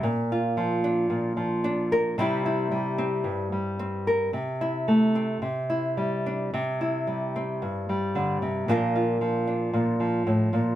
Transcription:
\new Staff \with { instrumentName = "Nylon-string guitar" } { \clef bass \time 4/4 \key c \mixolydian \tempo 4 = 112 << { r8 f'4 d'4. d'8 bes'8 | <g c' e' g'>8 e'4 c'4. c'8 bes'8 | r8 e'4 c'8 r8 e'4 d'8 | r8 e'4 c'2~ c'8 |
<f d' f' bes'>8 f'4 d'2~ d'8 | } \\ { bes,4 f4 bes,8 f4. | c4 g4 g,8 g4. | c4 a4 c4 g4 | c4 g4 g,8 g8 d8 c8 |
bes,4 f4 bes,8 f8 a,8 bes,8 | } >> }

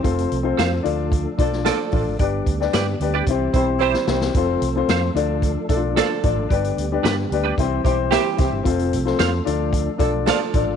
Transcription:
<<
  \new Staff \with { instrumentName = "Clean electric guitar" } { \time 4/4 \key d \dorian \tempo 4 = 112 r4 <a' c'' f''>16 r4. r16 <f' a' d''>16 r8. | r4 <g' b' d''>16 r8 <g' b' d''>16 r4 <g' c'' e''>16 r8. | r4 <a' c'' f''>16 r4. r16 <a' d'' f''>16 r8. | r4 <d' g' b'>16 r8 <d' g' b'>16 r4 <g' c'' e''>16 r8. |
r4 <a' c'' f''>16 r4. r16 <a' d'' f''>16 r8. | }
  \new Staff \with { instrumentName = "Upright piano" } { \time 4/4 \key d \dorian <c' f' a' c''>8 r16 <c' f' a' c''>8 r16 <d' f' a' d''>8. r16 <d' f' a' d''>8. r16 <d' f' a' d''>8 | <d' g' b' d''>8 r16 <d' g' b' d''>8 r16 <d' g' b' d''>8 <c' e' g' c''>8 <c' e' g' c''>8. r16 <c' e' g' c''>8 | <c' f' a' c''>8 r16 <c' f' a' c''>8 r16 <d' f' a' d''>8. r16 <d' e' f' a' d''>8. r16 <d' f' a' d''>8 | <d' g' b' d''>8 r16 <d' g' b' d''>8 r16 <d' g' b' d''>8 <c' e' g' c''>8 <c' e' g' c''>8. r16 <c' e' g' c''>8 |
<c' f' a' c''>8 r16 <c' f' a' c''>8 r16 <d' f' a' d''>8. r16 <d' f' a' d''>8. r16 <d' f' a' d''>8 | }
  \new Staff \with { instrumentName = "Saxophone section" } { \time 4/4 \key d \dorian r2 r8 <f d' a'>16 r16 <f d' a'>8. r16 | r2 r8 <g e' c''>16 r16 <g e' c''>8. r16 | r2 r8 <f d' a'>16 r16 <f d' a'>8. r16 | r2 r8 <e c' g'>16 r16 <e c' g'>8. r16 |
r2 r8 <f d' a'>16 r16 <f d' a'>8. r16 | }
  \new Staff \with { instrumentName = "Tonewheel organ" } { \time 4/4 \key d \dorian << { a'1 | g'1 | a'4. a'2~ a'8 | g'2 g'2 |
a'1 | } \\ { c'4. d'2~ d'8 | b2 c'2~ | c'4. d'2~ d'8 | b2 c'2~ |
c'4. d'2~ d'8 | } >> }
  \new Staff \with { instrumentName = "Tonewheel organ" } { \clef bass \time 4/4 \key d \dorian << { a1 | g1 | a1 | g1 |
a1 | } \\ { f4. f2~ f8 | d2 e2 | f1 | d2 e2 |
f1 | } >> }
  \new Staff \with { instrumentName = "Fingered electric bass" } { \clef bass \time 4/4 \key d \dorian f,,8 c,8 f,8 d,4 b,,8. r16 a,,16 aes,,16 | g,,8 d,8 g,8 d,8 c,8 b,,4 c,8 | f,,8 c,8 f,8 d,4 b,,8. r16 a,,16 aes,,16 | g,,8 d,8 g,8 d,8 c,8 b,,8. r16 c,16 g,,16 |
f,,8 c,8 f,8 d,4 b,,8. r16 a,,16 aes,,16 | }
  \new DrumStaff \with { instrumentName = "Drums" } \drummode { \time 4/4 <hh bd>16 hh16 hh8 <hh sn>8 hh8 <hh bd>8 <hh bd>16 sn16 <hh sn>8 <hho bd>8 | <hh bd>8 <hh bd>16 sn16 <hh sn>8 hh8 <hh bd>8 <hh bd>8 r16 sn16 sn16 sn16 | <hh bd>8 hh8 <hh sn>8 hh8 <hh bd>8 <hh bd>8 <hh sn>8 <hh bd>8 | <hh bd>16 hh16 hh8 <hh sn>8 hh8 <hh bd>8 <hh bd>8 <hh sn>8 <hh bd sn>8 |
<hh bd>16 hh16 hh16 sn16 <hh sn>8 hh8 <hh bd>8 <hh bd>8 <hh sn>8 <hh bd>8 | }
>>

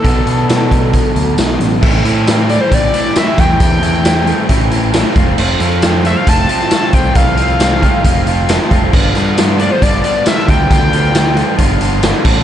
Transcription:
<<
  \new Staff \with { instrumentName = "Analog synth lead" } { \time 4/4 \key a \minor \tempo 4 = 135 a'2. r4 | r4. d''16 c''16 d''8 d''8 e''8 g''8 | g''2 r2 | r4. e''16 f''16 a''8. a''8. g''8 |
f''2.~ f''8 r8 | r4. d''16 c''16 d''8 d''8 e''8 g''8 | g''2 r2 | }
  \new Staff \with { instrumentName = "Overdriven electric guitar" } { \time 4/4 \key a \minor <b, fis b d' fis'>1 | <a, e a c' e'>8 <a, e a c' e'>8 <a, e a c' e'>8 <a, e a c' e'>8 <a, e a c' e'>8 <a, e a c' e'>8 <a, e a c' e'>8 <a, e a c' e'>8 | <a, e a c' e'>8 <a, e a c' e'>8 <a, e a c' e'>8 <a, e a c' e'>8 <a, e a c' e'>8 <a, e a c' e'>8 <a, e a c' e'>8 <f a c' f'>8 | <f a c' f'>8 <f a c' f'>8 <f a c' f'>8 <f a c' f'>8 <f a c' f'>8 <f a c' f'>8 <f a c' f'>8 <f a c' f'>8 |
<f a c' f'>8 <f a c' f'>8 <f a c' f'>8 <f a c' f'>8 <f a c' f'>8 <f a c' f'>8 <f a c' f'>8 <f a c' f'>8 | <g, d f b f'>8 <g, d f b f'>8 <g, d f b f'>8 <g, d f b f'>8 <g, d f b f'>8 <g, d f b f'>8 <g, d f b f'>8 <g, d f b f'>8 | <g, d f b f'>8 <g, d f b f'>8 <g, d f b f'>8 <g, d f b f'>8 <g, d f b f'>8 <g, d f b f'>8 <g, d f b f'>8 <a, d a d' f'>8 | }
  \new Staff \with { instrumentName = "Picked electric bass" } { \clef bass \time 4/4 \key a \minor b,,8 b,2 d,8 b,,8 a,,8 | a,,8 a,4. a,,8 r4 e,8 | e,2 a,,4. f,,8 | f,,8 f,4. f,,8 r4 c,8 |
c,2 f,,4. f,,8 | g,,8 g,4. g,,8 r4 d,8 | d,2 g,,4. a,,8 | }
  \new DrumStaff \with { instrumentName = "Drums" } \drummode { \time 4/4 <hh bd>8 hh8 <hh sn tamb>8 <hh bd>8 <hh bd>8 hh8 <hh sn tamb>8 hh8 | <cymc bd>8 hh8 <hh sn tamb>8 hh8 <hh bd>8 hh16 sn16 <hh sn tamb>8 <hh bd>8 | <hh bd>8 hh8 <hh sn tamb>8 hh8 <hh bd>8 hh8 <hh sn tamb>8 <hh bd>8 | cymc8 hh8 <hh sn tamb>8 hh8 <hh bd>8 hh16 sn16 <hh sn tamb>8 <hh bd>8 |
<hh bd>8 hh8 <hh sn tamb>8 <hh bd>8 <hh bd>8 hh8 <hh sn tamb>8 <hh bd>8 | <cymc bd>8 hh8 <hh sn tamb>8 hh8 <hh bd>8 hh8 <hh sn tamb>8 <hh bd>8 | <hh bd>8 hh8 <hh sn tamb>8 hh8 <hh bd>8 hh8 <hh sn tamb>8 <cymc bd>8 | }
>>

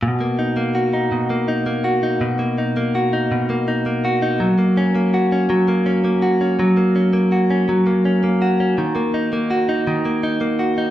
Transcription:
\new Staff \with { instrumentName = "Clean electric guitar" } { \time 6/8 \key b \major \tempo 4. = 55 b,16 ais16 dis'16 ais16 fis'16 dis'16 b,16 ais16 dis'16 ais16 fis'16 dis'16 | b,16 ais16 dis'16 ais16 fis'16 dis'16 b,16 ais16 dis'16 ais16 fis'16 dis'16 | fis16 ais16 cis'16 ais16 fis'16 cis'16 fis16 ais16 cis'16 ais16 fis'16 cis'16 | fis16 ais16 cis'16 ais16 fis'16 cis'16 fis16 ais16 cis'16 ais16 fis'16 cis'16 |
dis16 ais16 dis'16 ais16 fis'16 dis'16 dis16 ais16 dis'16 ais16 fis'16 dis'16 | }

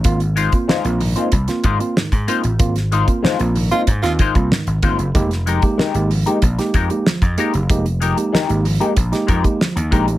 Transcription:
<<
  \new Staff \with { instrumentName = "Tenor saxophone" } { \time 4/4 \key f \minor \tempo 4 = 94 r1 | r4. r16 f'16 r16 f'16 r4. | r1 | r1 | }
  \new Staff \with { instrumentName = "Clean electric guitar" } { \time 4/4 \key f \minor r8 <aes ees' f' c''>16 r16 <aes ees' f' c''>16 r8 <aes ees' f' c''>16 r8 <aes ees' f' c''>16 r8. <aes ees' f' c''>16 r16 | r8 <aes ees' f' c''>16 r16 <aes ees' f' c''>16 r8 <aes ees' f' c''>16 r8 <aes ees' f' c''>16 r8. <aes ees' f' c''>16 r16 | r8 <aes ees' g' bes'>16 r16 <aes ees' g' bes'>16 r8 <aes ees' g' bes'>16 r8 <aes ees' g' bes'>16 r8. <aes ees' g' bes'>16 r16 | r8 <aes ees' g' bes'>16 r16 <aes ees' g' bes'>16 r8 <aes ees' g' bes'>16 r8 <aes ees' g' bes'>16 r8. <aes ees' g' bes'>16 r16 | }
  \new Staff \with { instrumentName = "Tine electric piano" } { \time 4/4 \key f \minor <bes c' f'>16 r16 <aes, ees>16 <bes c' f'>16 r16 <bes c' f'>16 <aes, ees>16 <bes c' f'>16 r16 <bes c' f'>16 <aes, ees>16 <bes c' f'>16 <aes, ees>16 r16 <bes c' f'>16 <c' f'>16 | <bes c' f'>16 r16 <aes, ees>16 <bes c' f'>16 r16 <bes c' f'>16 <aes, ees>16 <bes c' f'>16 r16 <bes c' f'>16 <aes, ees>16 <bes c' f'>16 <aes, ees>16 r16 <bes c' f'>16 <c' f'>16 | <aes bes ees' g'>16 r16 f16 <aes bes ees' g'>16 r16 <aes bes ees' g'>16 f16 <aes bes ees' g'>16 r16 <aes bes ees' g'>16 f16 <aes bes ees' g'>16 f16 r16 <aes bes ees' g'>16 <ees' g'>16 | <aes bes ees' g'>16 r16 f16 <aes bes ees' g'>16 r16 <aes bes ees' g'>16 f16 <aes bes ees' g'>16 r16 <aes bes ees' g'>16 f16 <aes bes ees' g'>16 f16 r16 <aes bes ees' g'>16 <ees' g'>16 | }
  \new Staff \with { instrumentName = "Slap bass" } { \clef bass \time 4/4 \key f \minor aes,,8. r8 bes,,8 r16 c,16 r16 aes,16 r8 aes,16 r16 a,,16 | aes,,8. r8 bes,,8 r16 aes,16 ees,16 r16 c,16 r16 aes,,16 g,,16 ges,,16 | f,,8. r8 aes,,8 r16 bes,,16 r16 f,16 r8 f,16 r16 ges,,16 | f,,8. r8 aes,,8 r16 bes,,16 r16 f,16 r8 ees,16 bes,,16 a,,16 | }
  \new DrumStaff \with { instrumentName = "Drums" } \drummode { \time 4/4 <hh bd>16 hh16 hh16 <hh bd>16 sn16 hh16 hho16 hh16 <hh bd>16 <hh sn>16 <hh bd>16 hh16 sn16 <hh bd>16 hh16 hh16 | <hh bd>16 <hh sn>16 hh16 <hh bd>16 sn16 hh16 hho16 hh16 <hh bd>16 <hh sn>16 <hh bd>16 <hh bd>16 sn16 hh16 <hh bd>16 hh16 | <hh bd>16 <hh sn>16 hh16 <hh bd>16 sn16 hh16 hho16 hh16 <hh bd>16 <hh sn>16 <hh bd>16 hh16 sn16 <hh bd>16 hh16 hh16 | <hh bd>16 hh16 hh16 hh16 sn16 hh16 hho16 hh16 <hh bd>16 <hh sn>16 <hh bd>16 <hh bd>16 sn16 hh16 <hh bd>16 hh16 | }
>>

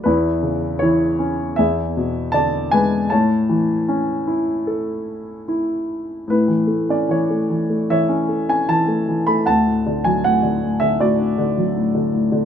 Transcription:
<<
  \new Staff \with { instrumentName = "Grand piano" } { \time 4/4 \key a \major \tempo 4 = 77 << { b'4 cis''4 e''4 a''8 gis''8 | a''2. r4 | b'8. d''16 cis''4 e''8. gis''16 a''8. b''16 | a''8. gis''16 fis''8. e''16 d''4. r8 | } \\ { e'4 e'4 gis'4 d''8 b'8 | cis''2. r4 | e'2 cis''2 | fis''2 fis'2 | } >> }
  \new Staff \with { instrumentName = "Grand piano" } { \clef bass \time 4/4 \key a \major e,8 cis8 e8 cis'8 e,8 b,8 d8 gis8 | a,8 e8 cis'8 e'8 a'4 e'4 | a,16 e16 a16 cis'16 e16 a16 e16 a16 e16 cis'16 a16 cis'16 e16 a16 e16 a16 | d,16 a,16 d16 fis16 a,16 d16 a,16 d16 a,16 d'16 d16 fis16 a,16 d16 a,16 d16 | }
>>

